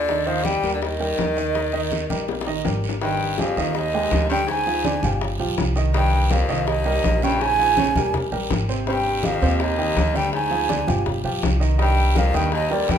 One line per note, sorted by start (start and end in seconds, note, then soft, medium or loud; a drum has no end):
0.00 0.57 D#2 medium
0.00 0.28 D3 medium
0.00 0.29 D5 medium
0.08 0.23 D#3 medium
0.08 0.24 D#4 medium
0.08 0.24 D#5 medium
0.08 high bongo medium
0.08 high conga soft
0.08 long guiro medium
0.26 0.57 D#3 medium
0.26 0.45 F3 medium
0.26 0.57 D#4 medium
0.26 0.57 D#5 medium
0.26 0.47 F5 medium
0.26 high bongo soft
0.26 high conga soft
0.43 0.73 G3 medium
0.43 0.74 G5 medium
0.43 high bongo medium
0.43 high conga medium
0.43 short guiro medium
0.63 1.14 D#2 medium
0.63 0.94 G3 medium
0.63 0.94 G4 medium
0.63 0.94 A#4 medium
0.63 high bongo soft
0.63 short guiro medium
0.74 0.84 D3 soft
0.74 0.84 D5 medium
0.82 2.65 D#3 medium
0.82 2.65 D#5 medium
0.82 high bongo medium
0.82 high conga soft
0.82 long guiro medium
1.00 1.30 G3 medium
1.00 1.30 G4 medium
1.00 1.31 A#4 medium
1.00 high conga soft
1.19 2.04 D#2 medium
1.19 high bongo medium
1.19 low bongo medium
1.19 high conga medium
1.19 short guiro medium
1.37 1.67 D#3 medium
1.37 1.67 D#4 medium
1.37 1.67 D#5 medium
1.37 high bongo soft
1.37 high conga soft
1.37 short guiro medium
1.55 high bongo medium
1.55 high conga soft
1.55 long guiro medium
1.73 2.03 D#3 medium
1.73 2.03 D#4 medium
1.73 2.04 D#5 medium
1.73 high bongo soft
1.73 high conga soft
1.91 high bongo medium
1.91 high conga medium
1.91 short guiro medium
2.10 2.61 A#1 medium
2.10 2.40 G3 medium
2.10 2.40 G4 medium
2.10 2.40 A#4 medium
2.10 high conga medium
2.10 short guiro medium
2.28 high bongo medium
2.28 high conga soft
2.28 long guiro medium
2.41 high bongo medium
2.47 2.62 D#3 medium
2.47 2.62 D#4 medium
2.47 2.62 D#5 medium
2.47 high conga soft
2.65 3.51 G#1 medium
2.65 2.95 G3 medium
2.65 2.95 G4 medium
2.65 2.95 A#4 medium
2.65 low bongo medium
2.65 high conga medium
2.65 short guiro medium
2.84 high conga soft
2.84 short guiro medium
2.89 low bongo medium
3.02 3.40 G2 medium
3.02 3.32 D#3 medium
3.02 3.32 D#4 medium
3.02 3.32 D#5 medium
3.02 3.41 G5 loud
3.02 high bongo medium
3.02 high conga soft
3.02 long guiro medium
3.20 high bongo soft
3.20 high conga soft
3.38 3.77 F2 medium
3.38 3.54 G3 medium
3.38 3.54 G4 medium
3.38 3.54 G#4 medium
3.38 3.79 F5 medium
3.38 high bongo medium
3.38 high conga medium
3.38 short guiro medium
3.57 4.08 D#2 medium
3.57 3.87 D#3 medium
3.57 3.87 D#4 medium
3.57 3.88 D#5 medium
3.57 high bongo soft
3.57 short guiro medium
3.75 4.29 D#2 medium
3.75 4.31 D#5 loud
3.75 high bongo medium
3.75 high conga soft
3.75 long guiro medium
3.94 4.24 G#3 medium
3.94 4.24 G4 medium
3.94 4.24 G#4 medium
3.94 high conga soft
4.11 4.97 D2 medium
4.11 high bongo medium
4.11 low bongo medium
4.11 high conga medium
4.11 short guiro medium
4.29 4.46 G2 medium
4.29 4.61 D3 medium
4.29 4.61 D4 medium
4.29 4.61 D5 medium
4.29 4.48 G5 loud
4.29 high bongo soft
4.29 high conga soft
4.29 short guiro medium
4.47 5.17 G#2 medium
4.47 5.18 G#5 loud
4.47 high bongo medium
4.47 high conga soft
4.47 long guiro medium
4.67 4.82 F3 medium
4.67 4.82 F4 medium
4.67 4.82 G#4 medium
4.67 high bongo soft
4.67 high conga soft
4.85 5.00 D3 medium
4.85 5.00 D4 medium
4.85 5.00 D5 medium
4.85 high bongo medium
4.85 high conga medium
4.85 short guiro medium
5.02 5.37 G1 medium
5.02 5.33 F3 medium
5.02 5.34 F4 medium
5.02 5.34 G4 medium
5.02 high conga medium
5.02 low conga medium
5.02 short guiro medium
5.21 high bongo medium
5.21 high conga soft
5.21 long guiro medium
5.38 5.56 B1 medium
5.38 5.70 F3 medium
5.38 5.70 F4 medium
5.38 5.70 G4 medium
5.38 high bongo soft
5.38 high conga soft
5.58 6.43 C2 medium
5.58 high bongo medium
5.58 low bongo medium
5.58 high conga medium
5.58 short guiro medium
5.76 5.91 D#3 medium
5.76 5.91 D#4 medium
5.76 5.91 D#5 medium
5.76 high bongo soft
5.76 high conga soft
5.76 short guiro medium
5.93 6.32 G2 medium
5.93 6.25 D#3 medium
5.93 6.25 D#4 medium
5.93 6.25 D#5 medium
5.93 6.34 G5 medium
5.93 high bongo medium
5.93 high conga soft
5.93 long guiro medium
6.12 high bongo soft
6.12 high conga soft
6.30 6.69 F2 medium
6.30 6.46 G3 medium
6.30 6.46 G4 medium
6.30 6.46 A#4 medium
6.30 6.70 F5 medium
6.30 high bongo medium
6.30 high conga medium
6.30 short guiro medium
6.48 7.00 C2 medium
6.48 6.79 D#3 medium
6.48 6.79 D#4 medium
6.48 6.80 D#5 medium
6.48 high bongo soft
6.48 short guiro medium
6.67 7.24 D#2 medium
6.67 7.25 D#5 loud
6.67 high bongo medium
6.67 high conga soft
6.67 long guiro medium
6.86 7.16 G3 medium
6.86 7.16 G4 medium
6.86 7.16 A#4 medium
6.86 high conga soft
7.04 7.90 A#1 medium
7.04 high bongo medium
7.04 low bongo medium
7.04 high conga medium
7.04 short guiro medium
7.22 7.42 G2 medium
7.22 7.53 C#3 medium
7.22 7.53 C#4 medium
7.22 7.53 C#5 medium
7.22 7.43 G5 loud
7.22 high bongo soft
7.22 high conga soft
7.22 short guiro medium
7.40 8.14 G#2 medium
7.40 8.14 G#5 loud
7.40 high bongo medium
7.40 high conga soft
7.40 long guiro medium
7.59 7.74 F3 medium
7.59 7.74 F4 medium
7.59 7.75 G#4 medium
7.59 high bongo soft
7.59 high conga soft
7.77 7.92 C#3 medium
7.77 7.93 C#4 medium
7.77 7.93 C#5 medium
7.77 high bongo medium
7.77 high conga medium
7.77 short guiro medium
7.95 8.29 D#2 medium
7.95 8.26 G3 medium
7.95 8.26 G4 medium
7.95 8.26 A#4 medium
7.95 high conga medium
7.95 low conga medium
7.95 short guiro medium
8.14 high bongo medium
8.14 high conga soft
8.14 low conga medium
8.14 long guiro medium
8.32 8.49 A#1 medium
8.32 8.62 G3 medium
8.32 8.62 G4 medium
8.32 8.63 A#4 medium
8.32 high bongo soft
8.32 high conga soft
8.50 9.36 G#1 medium
8.50 high bongo medium
8.50 low bongo medium
8.50 high conga medium
8.50 short guiro medium
8.69 8.84 C3 medium
8.69 8.84 C4 medium
8.69 8.84 C5 medium
8.69 high bongo soft
8.69 high conga soft
8.69 short guiro medium
8.87 9.27 G2 medium
8.87 9.18 C3 medium
8.87 9.18 C4 medium
8.87 9.18 C5 medium
8.87 9.27 G5 loud
8.87 high bongo medium
8.87 high conga soft
8.87 long guiro medium
9.05 high bongo soft
9.05 high conga soft
9.23 9.63 F2 medium
9.23 9.39 D#3 medium
9.23 9.39 D#4 medium
9.23 9.39 G4 medium
9.23 9.63 F5 medium
9.23 high bongo medium
9.23 high conga loud
9.23 short guiro medium
9.42 9.93 D#2 medium
9.42 9.72 C3 medium
9.42 9.72 C4 medium
9.42 9.72 C5 medium
9.42 high bongo soft
9.42 short guiro medium
9.60 10.17 D#2 medium
9.60 10.17 D#5 medium
9.60 high bongo medium
9.60 high conga soft
9.60 long guiro medium
9.78 10.08 D#3 medium
9.78 10.09 D#4 medium
9.78 10.09 G4 medium
9.78 high conga soft
9.96 10.82 D2 medium
9.96 high bongo medium
9.96 low bongo medium
9.96 high conga medium
9.96 short guiro medium
10.14 10.33 G2 medium
10.14 10.45 D3 medium
10.14 10.45 D4 medium
10.14 10.45 D5 medium
10.14 10.34 G5 loud
10.14 high bongo soft
10.14 high conga soft
10.14 short guiro medium
10.33 11.03 G#2 medium
10.33 11.03 G#5 loud
10.33 high bongo medium
10.33 high conga soft
10.33 long guiro medium
10.51 10.66 F3 medium
10.51 10.66 F4 medium
10.51 10.66 G#4 medium
10.51 high bongo soft
10.51 high conga soft
10.69 10.84 D3 medium
10.69 10.84 D4 medium
10.69 10.85 D5 medium
10.69 high bongo medium
10.69 high conga medium
10.69 short guiro medium
10.87 11.22 G1 medium
10.87 11.18 F3 medium
10.87 11.18 F4 medium
10.87 11.18 G4 medium
10.87 high conga medium
10.87 low conga medium
10.87 short guiro medium
11.06 high bongo medium
11.06 high conga soft
11.06 low conga medium
11.06 long guiro medium
11.24 11.41 B1 medium
11.24 11.54 F3 medium
11.24 11.55 F4 medium
11.24 11.55 G4 medium
11.24 high bongo soft
11.24 high conga soft
11.43 12.28 C2 medium
11.43 high bongo medium
11.43 low bongo medium
11.43 high conga medium
11.43 short guiro medium
11.60 11.76 D#3 medium
11.60 11.76 D#4 medium
11.60 11.76 D#5 medium
11.60 high bongo soft
11.60 high conga soft
11.60 short guiro medium
11.78 12.18 G2 medium
11.78 12.09 D#3 medium
11.78 12.09 D#4 medium
11.78 12.09 D#5 medium
11.78 12.20 G5 loud
11.78 high bongo medium
11.78 high conga soft
11.78 long guiro medium
11.98 high bongo soft
11.98 high conga soft
12.15 12.37 F2 medium
12.15 12.31 G3 medium
12.15 12.31 G4 medium
12.15 12.31 A#4 medium
12.15 12.38 F5 loud
12.15 high bongo medium
12.15 high conga medium
12.15 short guiro medium
12.34 12.85 D#2 medium
12.34 12.52 G2 medium
12.34 12.64 D#3 medium
12.34 12.65 D#4 medium
12.34 12.65 D#5 medium
12.34 12.54 G5 medium
12.34 high bongo soft
12.34 short guiro medium
12.52 12.73 D#2 medium
12.52 12.74 D#5 medium
12.52 high bongo medium
12.52 high conga soft
12.52 long guiro medium
12.71 12.92 D2 medium
12.71 12.98 G3 medium
12.71 12.98 G4 medium
12.71 12.98 A#4 medium
12.71 12.93 D5 medium
12.71 high conga soft
12.88 12.98 F2 medium
12.88 12.98 G2 medium
12.88 12.98 G5 loud
12.88 high bongo medium
12.88 low bongo medium
12.88 high conga medium
12.88 short guiro medium